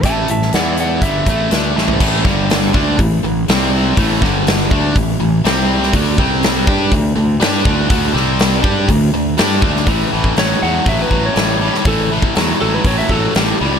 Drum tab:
CC |----------------|x---------------|----------------|----------------|
HH |x-x-x-x-x-x-x---|----o---o---o---|o---o---o---o---|o---o---o---o---|
SD |---oo-------o-o-|--o-o-------o---|--o-o-------o--o|----o-------o---|
FT |---------------o|----------------|----------------|----------------|
BD |o-------o-o-----|o-o---o-o-------|o-o---o-o-------|o-o---o-o-----o-|

CC |----------------|----------------|----------------|
HH |o---o---o---o---|o---o---o---o---|o---o---o---o---|
SD |--o-o-------o--o|----o-------o--o|----o-------o---|
FT |----------------|----------------|----------------|
BD |o-----o-o-----o-|o--o----o-o-----|o--o----o-o-----|